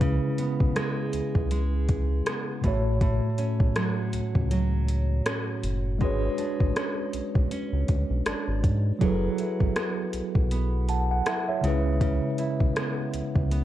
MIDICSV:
0, 0, Header, 1, 5, 480
1, 0, Start_track
1, 0, Tempo, 750000
1, 6, Time_signature, 4, 2, 24, 8
1, 8730, End_track
2, 0, Start_track
2, 0, Title_t, "Tine electric piano"
2, 0, Program_c, 0, 4
2, 0, Control_c, 0, 64, 127
2, 0, Note_on_c, 0, 49, 68
2, 0, Note_on_c, 0, 56, 63
2, 0, Note_on_c, 0, 64, 65
2, 0, Note_on_c, 0, 71, 77
2, 1654, Note_off_c, 0, 49, 0
2, 1660, Note_off_c, 0, 56, 0
2, 1667, Note_off_c, 0, 64, 0
2, 1670, Note_on_c, 0, 45, 71
2, 1685, Note_on_c, 0, 57, 63
2, 1695, Note_off_c, 0, 71, 0
2, 1696, Control_c, 0, 64, 0
2, 1697, Note_on_c, 0, 66, 62
2, 1711, Note_on_c, 0, 73, 78
2, 1804, Control_c, 0, 64, 127
2, 3573, Note_off_c, 0, 45, 0
2, 3580, Note_off_c, 0, 57, 0
2, 3586, Note_off_c, 0, 66, 0
2, 3593, Note_off_c, 0, 73, 0
2, 3831, Note_on_c, 0, 56, 76
2, 3841, Note_on_c, 0, 62, 68
2, 3851, Note_on_c, 0, 66, 67
2, 3853, Control_c, 0, 64, 0
2, 3862, Note_on_c, 0, 71, 70
2, 3871, Note_on_c, 0, 73, 78
2, 3975, Control_c, 0, 64, 127
2, 5733, Note_off_c, 0, 56, 0
2, 5738, Note_off_c, 0, 62, 0
2, 5743, Note_off_c, 0, 66, 0
2, 5748, Note_off_c, 0, 71, 0
2, 5751, Note_on_c, 0, 54, 73
2, 5753, Note_off_c, 0, 73, 0
2, 5761, Note_on_c, 0, 64, 65
2, 5772, Note_on_c, 0, 68, 68
2, 5774, Control_c, 0, 64, 0
2, 5781, Note_on_c, 0, 69, 68
2, 5792, Note_on_c, 0, 71, 82
2, 5904, Control_c, 0, 64, 127
2, 6971, Note_on_c, 0, 81, 58
2, 6974, Note_on_c, 0, 78, 48
2, 7101, Note_off_c, 0, 81, 0
2, 7103, Note_off_c, 0, 78, 0
2, 7111, Note_on_c, 0, 78, 68
2, 7337, Note_off_c, 0, 78, 0
2, 7350, Note_on_c, 0, 76, 63
2, 7354, Note_on_c, 0, 73, 54
2, 7413, Note_off_c, 0, 54, 0
2, 7418, Note_off_c, 0, 64, 0
2, 7423, Note_off_c, 0, 68, 0
2, 7428, Note_off_c, 0, 69, 0
2, 7430, Note_on_c, 0, 49, 67
2, 7434, Note_off_c, 0, 71, 0
2, 7444, Note_on_c, 0, 56, 63
2, 7454, Control_c, 0, 64, 0
2, 7458, Note_on_c, 0, 64, 66
2, 7471, Note_on_c, 0, 71, 76
2, 7560, Control_c, 0, 64, 127
2, 7576, Note_off_c, 0, 76, 0
2, 7578, Note_off_c, 0, 73, 0
2, 8730, Note_off_c, 0, 49, 0
2, 8730, Note_off_c, 0, 56, 0
2, 8730, Note_off_c, 0, 64, 0
2, 8730, Note_off_c, 0, 71, 0
2, 8730, End_track
3, 0, Start_track
3, 0, Title_t, "Nylon-string guitar"
3, 0, Program_c, 1, 24
3, 0, Note_on_c, 1, 64, 61
3, 7, Note_on_c, 1, 49, 77
3, 247, Note_on_c, 1, 59, 55
3, 486, Note_on_c, 1, 56, 61
3, 959, Note_off_c, 1, 56, 0
3, 966, Note_on_c, 1, 56, 66
3, 1438, Note_off_c, 1, 59, 0
3, 1445, Note_on_c, 1, 59, 57
3, 1686, Note_on_c, 1, 45, 79
3, 1742, Note_off_c, 1, 49, 0
3, 1742, Note_off_c, 1, 56, 0
3, 1742, Note_off_c, 1, 59, 0
3, 1767, Note_off_c, 1, 64, 0
3, 1918, Note_off_c, 1, 45, 0
3, 1925, Note_on_c, 1, 45, 78
3, 2166, Note_on_c, 1, 61, 58
3, 2406, Note_on_c, 1, 54, 58
3, 2883, Note_off_c, 1, 54, 0
3, 2886, Note_on_c, 1, 54, 65
3, 3363, Note_off_c, 1, 61, 0
3, 3365, Note_on_c, 1, 61, 60
3, 3844, Note_off_c, 1, 54, 0
3, 3846, Note_off_c, 1, 45, 0
3, 3846, Note_on_c, 1, 56, 81
3, 4087, Note_on_c, 1, 62, 57
3, 4106, Note_off_c, 1, 61, 0
3, 4328, Note_on_c, 1, 61, 63
3, 4804, Note_off_c, 1, 61, 0
3, 4807, Note_on_c, 1, 61, 65
3, 5280, Note_off_c, 1, 62, 0
3, 5288, Note_on_c, 1, 62, 55
3, 5765, Note_off_c, 1, 56, 0
3, 5767, Note_on_c, 1, 54, 82
3, 5823, Note_off_c, 1, 62, 0
3, 6008, Note_on_c, 1, 64, 57
3, 6245, Note_off_c, 1, 61, 0
3, 6248, Note_on_c, 1, 59, 61
3, 6726, Note_off_c, 1, 59, 0
3, 6728, Note_on_c, 1, 59, 66
3, 7205, Note_off_c, 1, 64, 0
3, 7208, Note_on_c, 1, 64, 60
3, 7447, Note_on_c, 1, 49, 74
3, 7503, Note_off_c, 1, 54, 0
3, 7680, Note_off_c, 1, 49, 0
3, 7687, Note_on_c, 1, 49, 81
3, 7707, Note_off_c, 1, 59, 0
3, 7925, Note_off_c, 1, 64, 0
3, 7927, Note_on_c, 1, 64, 57
3, 8168, Note_on_c, 1, 59, 57
3, 8639, Note_off_c, 1, 59, 0
3, 8647, Note_on_c, 1, 59, 68
3, 8730, Note_off_c, 1, 49, 0
3, 8730, Note_off_c, 1, 59, 0
3, 8730, Note_off_c, 1, 64, 0
3, 8730, End_track
4, 0, Start_track
4, 0, Title_t, "Analog synth bass"
4, 0, Program_c, 2, 38
4, 0, Note_on_c, 2, 37, 101
4, 131, Note_off_c, 2, 37, 0
4, 386, Note_on_c, 2, 35, 86
4, 463, Note_off_c, 2, 35, 0
4, 727, Note_on_c, 2, 37, 49
4, 782, Note_off_c, 2, 37, 0
4, 865, Note_on_c, 2, 37, 85
4, 1420, Note_off_c, 2, 37, 0
4, 1686, Note_on_c, 2, 33, 94
4, 2051, Note_off_c, 2, 33, 0
4, 2305, Note_on_c, 2, 35, 83
4, 2382, Note_off_c, 2, 35, 0
4, 2646, Note_on_c, 2, 37, 47
4, 2702, Note_off_c, 2, 37, 0
4, 2785, Note_on_c, 2, 37, 91
4, 3340, Note_off_c, 2, 37, 0
4, 3605, Note_on_c, 2, 30, 81
4, 3845, Note_on_c, 2, 32, 104
4, 3855, Note_off_c, 2, 30, 0
4, 4028, Note_off_c, 2, 32, 0
4, 4225, Note_on_c, 2, 33, 89
4, 4302, Note_off_c, 2, 33, 0
4, 4566, Note_on_c, 2, 35, 46
4, 4622, Note_off_c, 2, 35, 0
4, 4705, Note_on_c, 2, 35, 90
4, 4782, Note_off_c, 2, 35, 0
4, 4946, Note_on_c, 2, 37, 93
4, 5022, Note_off_c, 2, 37, 0
4, 5048, Note_on_c, 2, 38, 89
4, 5154, Note_off_c, 2, 38, 0
4, 5186, Note_on_c, 2, 35, 88
4, 5262, Note_off_c, 2, 35, 0
4, 5287, Note_on_c, 2, 32, 45
4, 5342, Note_off_c, 2, 32, 0
4, 5426, Note_on_c, 2, 32, 89
4, 5527, Note_on_c, 2, 44, 96
4, 5537, Note_off_c, 2, 32, 0
4, 5709, Note_off_c, 2, 44, 0
4, 5765, Note_on_c, 2, 30, 105
4, 5948, Note_off_c, 2, 30, 0
4, 6146, Note_on_c, 2, 32, 84
4, 6222, Note_off_c, 2, 32, 0
4, 6485, Note_on_c, 2, 35, 48
4, 6541, Note_off_c, 2, 35, 0
4, 6625, Note_on_c, 2, 35, 85
4, 7180, Note_off_c, 2, 35, 0
4, 7446, Note_on_c, 2, 37, 102
4, 7812, Note_off_c, 2, 37, 0
4, 8066, Note_on_c, 2, 35, 88
4, 8142, Note_off_c, 2, 35, 0
4, 8406, Note_on_c, 2, 37, 48
4, 8462, Note_off_c, 2, 37, 0
4, 8545, Note_on_c, 2, 37, 85
4, 8730, Note_off_c, 2, 37, 0
4, 8730, End_track
5, 0, Start_track
5, 0, Title_t, "Drums"
5, 6, Note_on_c, 9, 36, 102
5, 6, Note_on_c, 9, 42, 60
5, 70, Note_off_c, 9, 36, 0
5, 70, Note_off_c, 9, 42, 0
5, 245, Note_on_c, 9, 42, 58
5, 309, Note_off_c, 9, 42, 0
5, 386, Note_on_c, 9, 36, 77
5, 450, Note_off_c, 9, 36, 0
5, 486, Note_on_c, 9, 42, 61
5, 489, Note_on_c, 9, 37, 101
5, 550, Note_off_c, 9, 42, 0
5, 553, Note_off_c, 9, 37, 0
5, 724, Note_on_c, 9, 42, 72
5, 788, Note_off_c, 9, 42, 0
5, 865, Note_on_c, 9, 36, 94
5, 929, Note_off_c, 9, 36, 0
5, 966, Note_on_c, 9, 42, 64
5, 1030, Note_off_c, 9, 42, 0
5, 1206, Note_on_c, 9, 42, 58
5, 1208, Note_on_c, 9, 36, 84
5, 1270, Note_off_c, 9, 42, 0
5, 1272, Note_off_c, 9, 36, 0
5, 1446, Note_on_c, 9, 42, 71
5, 1449, Note_on_c, 9, 37, 107
5, 1510, Note_off_c, 9, 42, 0
5, 1513, Note_off_c, 9, 37, 0
5, 1686, Note_on_c, 9, 36, 86
5, 1686, Note_on_c, 9, 42, 67
5, 1750, Note_off_c, 9, 36, 0
5, 1750, Note_off_c, 9, 42, 0
5, 1926, Note_on_c, 9, 36, 102
5, 1926, Note_on_c, 9, 42, 59
5, 1990, Note_off_c, 9, 36, 0
5, 1990, Note_off_c, 9, 42, 0
5, 2164, Note_on_c, 9, 42, 57
5, 2228, Note_off_c, 9, 42, 0
5, 2305, Note_on_c, 9, 36, 83
5, 2369, Note_off_c, 9, 36, 0
5, 2406, Note_on_c, 9, 42, 59
5, 2409, Note_on_c, 9, 37, 103
5, 2470, Note_off_c, 9, 42, 0
5, 2473, Note_off_c, 9, 37, 0
5, 2645, Note_on_c, 9, 42, 72
5, 2709, Note_off_c, 9, 42, 0
5, 2785, Note_on_c, 9, 36, 86
5, 2849, Note_off_c, 9, 36, 0
5, 2886, Note_on_c, 9, 42, 66
5, 2950, Note_off_c, 9, 42, 0
5, 3126, Note_on_c, 9, 42, 61
5, 3190, Note_off_c, 9, 42, 0
5, 3365, Note_on_c, 9, 42, 76
5, 3368, Note_on_c, 9, 37, 111
5, 3429, Note_off_c, 9, 42, 0
5, 3432, Note_off_c, 9, 37, 0
5, 3607, Note_on_c, 9, 42, 67
5, 3671, Note_off_c, 9, 42, 0
5, 3845, Note_on_c, 9, 42, 56
5, 3846, Note_on_c, 9, 36, 102
5, 3909, Note_off_c, 9, 42, 0
5, 3910, Note_off_c, 9, 36, 0
5, 4084, Note_on_c, 9, 42, 55
5, 4148, Note_off_c, 9, 42, 0
5, 4226, Note_on_c, 9, 36, 80
5, 4290, Note_off_c, 9, 36, 0
5, 4327, Note_on_c, 9, 42, 60
5, 4330, Note_on_c, 9, 37, 106
5, 4391, Note_off_c, 9, 42, 0
5, 4394, Note_off_c, 9, 37, 0
5, 4565, Note_on_c, 9, 42, 73
5, 4629, Note_off_c, 9, 42, 0
5, 4705, Note_on_c, 9, 36, 85
5, 4769, Note_off_c, 9, 36, 0
5, 4808, Note_on_c, 9, 42, 64
5, 4872, Note_off_c, 9, 42, 0
5, 5046, Note_on_c, 9, 42, 60
5, 5048, Note_on_c, 9, 36, 83
5, 5110, Note_off_c, 9, 42, 0
5, 5112, Note_off_c, 9, 36, 0
5, 5286, Note_on_c, 9, 42, 71
5, 5289, Note_on_c, 9, 37, 110
5, 5350, Note_off_c, 9, 42, 0
5, 5353, Note_off_c, 9, 37, 0
5, 5527, Note_on_c, 9, 36, 81
5, 5527, Note_on_c, 9, 42, 70
5, 5591, Note_off_c, 9, 36, 0
5, 5591, Note_off_c, 9, 42, 0
5, 5766, Note_on_c, 9, 36, 104
5, 5766, Note_on_c, 9, 42, 60
5, 5830, Note_off_c, 9, 36, 0
5, 5830, Note_off_c, 9, 42, 0
5, 6005, Note_on_c, 9, 42, 57
5, 6069, Note_off_c, 9, 42, 0
5, 6146, Note_on_c, 9, 36, 77
5, 6210, Note_off_c, 9, 36, 0
5, 6246, Note_on_c, 9, 42, 61
5, 6248, Note_on_c, 9, 37, 106
5, 6310, Note_off_c, 9, 42, 0
5, 6312, Note_off_c, 9, 37, 0
5, 6484, Note_on_c, 9, 42, 73
5, 6548, Note_off_c, 9, 42, 0
5, 6625, Note_on_c, 9, 36, 88
5, 6689, Note_off_c, 9, 36, 0
5, 6728, Note_on_c, 9, 42, 64
5, 6792, Note_off_c, 9, 42, 0
5, 6967, Note_on_c, 9, 42, 59
5, 7031, Note_off_c, 9, 42, 0
5, 7207, Note_on_c, 9, 42, 72
5, 7210, Note_on_c, 9, 37, 106
5, 7271, Note_off_c, 9, 42, 0
5, 7274, Note_off_c, 9, 37, 0
5, 7448, Note_on_c, 9, 42, 66
5, 7512, Note_off_c, 9, 42, 0
5, 7686, Note_on_c, 9, 36, 98
5, 7687, Note_on_c, 9, 42, 58
5, 7750, Note_off_c, 9, 36, 0
5, 7751, Note_off_c, 9, 42, 0
5, 7925, Note_on_c, 9, 42, 57
5, 7989, Note_off_c, 9, 42, 0
5, 8066, Note_on_c, 9, 36, 78
5, 8130, Note_off_c, 9, 36, 0
5, 8167, Note_on_c, 9, 42, 60
5, 8169, Note_on_c, 9, 37, 108
5, 8231, Note_off_c, 9, 42, 0
5, 8233, Note_off_c, 9, 37, 0
5, 8405, Note_on_c, 9, 42, 70
5, 8469, Note_off_c, 9, 42, 0
5, 8545, Note_on_c, 9, 36, 88
5, 8609, Note_off_c, 9, 36, 0
5, 8647, Note_on_c, 9, 42, 66
5, 8711, Note_off_c, 9, 42, 0
5, 8730, End_track
0, 0, End_of_file